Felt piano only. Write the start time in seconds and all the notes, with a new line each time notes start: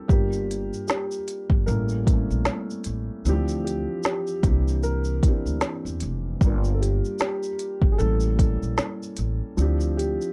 Already playing: G3 C4 D4 E4 G4 A#4
0.08 G3 A#3 D4 F4
0.12 A#4
1.66 G3 A#3 C#4 E4
1.70 A3
2.05 G3 A#3 C4 E4
2.09 A3
2.14 C#4
3.25 E3 C4 D4 E4
3.29 F3 G4
4.43 E3 A#3 C4 D4
4.47 G4
5.24 E3 A#3 C4 D4
5.28 G4
6.42 G3 A#3 D4 F4
6.46 A#4
7.97 G3 A#3 C#4 E4
8.01 A4
8.36 G3 A#3 C#4 E4
8.40 A4
9.57 F3 C4 D4 E4
9.61 G4